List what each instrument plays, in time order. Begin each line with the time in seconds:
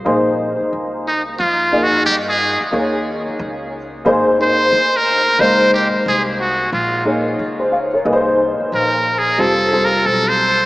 0.05 upright bass A#1, upright piano A#3 D#4 G#4 C5
0.61 muted upright bass stroke
0.73 upright bass C#2
1.07 muted trumpet D#4
1.40 upright bass F2, muted trumpet F4
1.72 upright piano A#3 D#4 G#4 D#5
1.83 muted trumpet F#4
2.06 upright bass G2, muted trumpet G4
2.29 muted trumpet G#4
2.61 muted upright bass stroke
2.71 upright bass D#2, upright piano A#3 D#4 G#4 C#5
3.28 muted upright bass stroke
3.39 upright bass C#2
4.05 upright bass G#1, upright piano A#3 D#4 G#4 C5
4.38 upright piano A#3 D#4 G#4 C5, muted trumpet C5
4.72 upright bass D2
4.96 muted trumpet A#4
5.38 upright bass C#2, upright piano G#3 A#3 D#4 C5, muted trumpet C5
5.74 muted trumpet G4
5.94 muted upright bass stroke
6.06 upright bass C2, muted trumpet G#4
6.40 muted trumpet F#4
6.72 upright bass A#1, muted trumpet F4
7.05 upright piano A#3 D#4 G#4 C#5
7.39 upright bass C#2
7.60 upright piano G#4 C5
7.72 upright piano C#5 F5
7.93 upright piano A#4 C#5
8.05 upright bass C2, upright piano A#3 D#4 G#4 B4
8.13 upright piano C5
8.60 muted upright bass stroke
8.72 upright bass A#1, muted trumpet A#4
9.18 muted trumpet G#4
9.38 upright bass F1, upright piano G3 C4 F4 A4, muted trumpet A4
9.71 upright piano G3 C4 F4 A4
9.84 muted trumpet A#4
10.06 upright bass B1, muted trumpet A4
10.28 muted trumpet C5